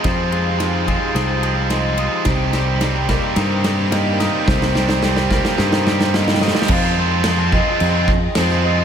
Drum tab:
CC |--------------------------------|--------------------------------|--------------------------------|x-------x-------x-------x-------|
RD |x---x---x---x---x---x---x---x---|x---x---x---x---x---x---x---x---|--------------------------------|--------------------------------|
SD |o-------o-------o-------o-------|o---o---o---o---o---o---o---o---|o-o-o-o-o-o-o-o-o-o-o-o-o-oooooo|--------o---------------o-o-----|
BD |o-----------o-------------------|o-----------o-------------------|o-----------o-------------------|o-----------o-------o-----------|